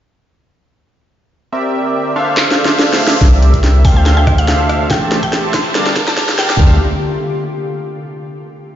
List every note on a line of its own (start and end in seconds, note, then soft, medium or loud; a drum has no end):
1.52 3.20 D3 medium
1.52 2.12 C4 medium
1.52 2.12 G4 medium
1.52 2.12 A#4 medium
1.52 3.20 C5 medium
1.52 2.12 D5 medium
1.52 2.12 E5 medium
1.52 riser medium
2.16 3.18 D4 medium
2.16 3.18 A4 medium
2.16 3.18 C5 medium
2.16 3.18 E5 medium
2.16 3.18 F5 loud
2.37 snare medium
2.37 clap medium
2.51 snare medium
2.65 snare medium
2.79 snare medium
2.93 snare medium
3.07 snare loud
3.21 3.83 C2 loud
3.21 3.81 C4 medium
3.21 4.89 D4 medium
3.21 3.81 G4 medium
3.21 3.81 A#4 medium
3.21 3.81 D5 medium
3.21 3.81 E5 medium
3.21 kick loud
3.21 snare soft
3.21 closed hi-hat medium
3.21 riser medium
3.43 closed hi-hat medium
3.54 kick medium
3.54 closed hi-hat medium
3.64 snare medium
3.64 closed hi-hat medium
3.85 4.92 D2 loud
3.85 5.73 C3 medium
3.85 5.73 A3 medium
3.85 4.87 D4 medium
3.85 4.87 A4 medium
3.85 4.87 C5 medium
3.85 4.87 E5 medium
3.85 4.87 F5 loud
3.85 3.92 G5 medium
3.85 kick loud
3.85 open hi-hat medium
3.96 4.03 G5 medium
4.06 4.13 G5 medium
4.06 snare medium
4.06 closed hi-hat medium
4.17 4.23 G5 medium
4.27 kick loud
4.27 cross-stick medium
4.27 closed hi-hat medium
4.38 4.45 F5 medium
4.38 closed hi-hat medium
4.48 4.56 F5 medium
4.48 snare medium
4.48 closed hi-hat medium
4.69 cross-stick medium
4.69 closed hi-hat medium
4.90 5.73 A1 loud
4.90 5.71 A3 medium
4.90 5.71 G4 medium
4.90 6.58 G4 medium
4.90 5.71 C5 medium
4.90 5.71 E5 medium
4.90 5.08 G5 medium
4.90 5.71 A5 medium
4.90 kick loud
4.90 snare medium
4.90 closed hi-hat medium
5.12 snare medium
5.12 closed hi-hat medium
5.23 5.52 G5 medium
5.23 kick medium
5.23 closed hi-hat medium
5.33 snare medium
5.33 closed hi-hat medium
5.54 5.71 C6 medium
5.54 kick loud
5.54 snare medium
5.54 open hi-hat medium
5.75 6.58 G1 loud
5.75 6.56 G3 medium
5.75 6.56 D4 medium
5.75 6.56 A#4 medium
5.75 6.56 F5 medium
5.75 6.56 A5 medium
5.75 snare medium
5.75 closed hi-hat medium
5.86 snare medium
5.96 kick loud
5.96 snare medium
5.96 closed hi-hat medium
6.07 6.36 A5 medium
6.07 snare medium
6.07 closed hi-hat medium
6.17 kick medium
6.17 snare loud
6.17 closed hi-hat medium
6.29 snare medium
6.39 6.60 G5 medium
6.39 snare loud
6.39 closed hi-hat medium
6.50 snare loud
6.60 6.79 D2 loud
6.60 6.76 D4 medium
6.60 6.76 A4 medium
6.60 6.76 C5 medium
6.60 6.76 E5 medium
6.60 6.76 F5 loud
6.60 kick loud
6.60 floor tom loud